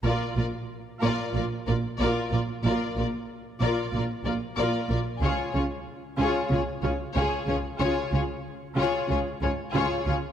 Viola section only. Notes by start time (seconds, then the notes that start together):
0.04 F4
0.36 F4
1.02 F4
1.35 F4
1.68 F4
2.00 F4
2.33 F4
2.66 F4
2.98 F4
3.62 F4
3.94 F4
4.26 F4
4.58 F4
4.91 F4
5.22 F4
5.55 F4
6.19 F4
6.51 F4
6.83 F4
7.15 F4
7.48 F4
7.79 F4
8.12 F4
8.77 F4
9.09 F4
9.42 F4
9.74 F4
10.06 F4